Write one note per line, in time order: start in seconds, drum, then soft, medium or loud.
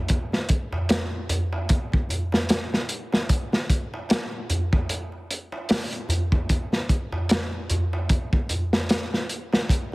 0.08 kick loud
0.08 closed hi-hat medium
0.08 darbuka tek medium
0.32 snare soft
0.32 darbuka tek soft
0.49 kick medium
0.49 closed hi-hat medium
0.72 darbuka tek medium
0.72 darbuka dum medium
0.89 snare loud
0.89 closed hi-hat medium
0.89 darbuka tek medium
1.13 darbuka tek soft
1.29 closed hi-hat medium
1.29 darbuka dum medium
1.53 darbuka tek medium
1.69 kick loud
1.69 closed hi-hat medium
1.69 darbuka tek medium
1.92 kick medium
1.92 darbuka tek soft
2.09 closed hi-hat medium
2.09 darbuka dum medium
2.32 snare soft
2.32 darbuka tek medium
2.49 snare loud
2.49 closed hi-hat medium
2.49 darbuka tek medium
2.73 snare soft
2.73 darbuka tek soft
2.89 closed hi-hat medium
3.12 snare medium
3.12 darbuka tek medium
3.29 kick medium
3.29 closed hi-hat medium
3.29 darbuka tek medium
3.53 snare soft
3.53 darbuka tek soft
3.70 kick medium
3.70 closed hi-hat medium
3.94 darbuka tek medium
4.09 snare loud
4.09 closed hi-hat medium
4.09 darbuka tek medium
4.33 darbuka tek soft
4.50 closed hi-hat medium
4.50 darbuka dum medium
4.73 kick medium
4.73 darbuka tek medium
4.89 closed hi-hat medium
4.89 darbuka tek medium
5.12 darbuka tek soft
5.31 closed hi-hat medium
5.52 darbuka tek medium
5.69 snare loud
5.69 open hi-hat medium
5.69 darbuka tek medium
5.92 closed hi-hat soft
5.92 darbuka tek soft
6.09 closed hi-hat medium
6.09 darbuka dum medium
6.32 kick medium
6.32 darbuka tek medium
6.49 kick loud
6.49 closed hi-hat medium
6.49 darbuka tek medium
6.72 snare soft
6.72 darbuka tek soft
6.89 kick medium
6.89 closed hi-hat medium
7.12 darbuka tek medium
7.12 darbuka dum soft
7.29 snare medium
7.29 closed hi-hat medium
7.29 darbuka tek medium
7.53 darbuka tek soft
7.70 closed hi-hat medium
7.70 darbuka dum medium
7.93 darbuka tek medium
8.09 kick loud
8.09 closed hi-hat medium
8.09 darbuka tek medium
8.33 kick medium
8.33 darbuka tek soft
8.49 closed hi-hat medium
8.49 darbuka dum medium
8.73 snare medium
8.73 darbuka tek medium
8.89 snare loud
8.89 closed hi-hat medium
8.89 darbuka tek medium
9.13 snare soft
9.13 darbuka tek soft
9.29 closed hi-hat medium
9.53 snare medium
9.53 darbuka tek medium
9.69 kick medium
9.69 closed hi-hat medium
9.69 darbuka tek medium